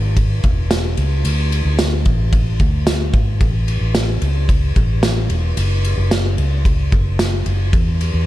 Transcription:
Already playing: fingered electric bass G#1
0.17 kick, ride
0.44 fingered electric bass E1, kick, ride
0.71 snare, ride, tambourine
0.97 fingered electric bass C#2, ride
1.25 fingered electric bass D2, ride
1.52 ride
1.65 fingered electric bass D2
1.79 snare, ride, tambourine
2.05 fingered electric bass A1, kick, ride
2.33 kick, ride
2.60 fingered electric bass D2, kick, ride
2.87 snare, ride, tambourine
3.14 fingered electric bass G#1, kick, ride
3.41 fingered electric bass A1, kick, ride
3.68 ride
3.81 fingered electric bass A1
3.95 snare, ride, tambourine
4.22 fingered electric bass C#2, ride
4.49 kick, ride
4.76 fingered electric bass A1, kick, ride
5.03 snare, ride, tambourine
5.30 fingered electric bass E1, ride
5.57 fingered electric bass F#1, ride
5.84 ride
5.97 fingered electric bass F#1
6.11 snare, ride, tambourine
6.38 fingered electric bass C#2, ride
6.65 kick, ride
6.92 fingered electric bass F#1, kick, ride
7.19 snare, ride, tambourine
7.46 fingered electric bass F#1, ride
7.73 fingered electric bass E2, kick, ride
8.01 ride
8.14 fingered electric bass E2

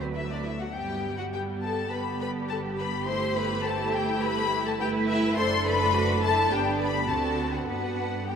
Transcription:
Already playing: double bass section D2, viola section F#3 A3, cello section B4
0.14 violin section E4 E5
0.29 violin section D4 D5
0.45 violin section E4 E5
0.59 violin section F#4 F#5
0.73 double bass section G1, viola section G3 B3, violin section G4 G5
1.18 violin section F#4 F#5
1.33 viola section G3 B3, violin section G4 G5
1.63 violin section A4 A5
1.92 viola section G3 B3, cello section G4, violin section B4 B5
2.21 violin section B4 B5
2.49 violin section A4 A5
2.79 violin section B4 B5
3.07 viola section A3 E4, violin section C5 C6
3.37 violin section B4 B5
3.65 viola section A3 E4, violin section A4 A5
3.95 violin section G4 G5
4.24 violin section B4 B5
4.67 violin section A4 A5
4.80 viola section A3 E4, violin section G4 G5, cello section B4
5.09 violin section E4 E5
5.38 double bass section F#1, viola section A3 D4, cello section A4, violin section C5 C6
5.67 violin section B4 B5
5.95 cello section F#4
6.23 cello section E4, violin section A4 A5
6.52 double bass section G1, viola section B3 D4, cello section D4, violin section G4 G5
6.82 violin section B4 B5
7.09 double bass section D2, viola section C4 D4, cello section F#4, violin section A4 A5
7.53 violin section F#4 F#5
7.68 double bass section G2, viola section B3 D4, violin section F#4 F#5, cello section B4
8.28 viola section B3 D4, violin section G4 G5, cello section G4

